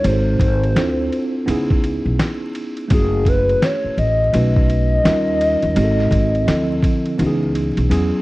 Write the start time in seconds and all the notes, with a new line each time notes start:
0.04 G#1 G#3 C4 D#4 F#4 G#4 C5, ride
0.13 A4
0.39 G#1, kick, ride
0.63 ride
0.75 D2 C4 D4 E4 F4 A4, snare, hi-hat pedal, ride
1.12 ride
1.46 C#2 B3 C#4 D#4 E4, ride
1.51 G#4
1.70 kick
1.84 ride
2.06 B1
2.19 snare, hi-hat pedal, ride
2.55 ride
2.77 ride
2.88 F#1 A3 C#4 E4 F#4, kick, ride
2.92 G#4
3.25 B4, kick, ride
3.49 ride
3.62 C#5, snare, hi-hat pedal, ride
3.84 muted upright bass stroke
3.97 A1 D#5, ride
4.33 B1 A3 C#4 D#4 F#4 B4, ride
4.56 kick
4.70 ride
5.04 D#2 G3 C#4 D#4 F4 A#4, snare, hi-hat pedal, ride
5.41 ride
5.62 D#2, ride
5.75 G#1 G#3 C4 D#4 F#4 G#4, ride
5.84 A4
5.99 snare
6.11 G#1, kick, ride
6.35 ride
6.46 D2 D3 F3 C4 E4 A4, snare, hi-hat pedal, ride
6.83 kick, ride
7.06 ride
7.18 C#2 E3 B3 C#4 D#4 F#4, ride
7.26 G#4
7.55 ride
7.77 B1, ride
7.89 E2 F#3 B3 C#4 E4 G#4, hi-hat pedal, ride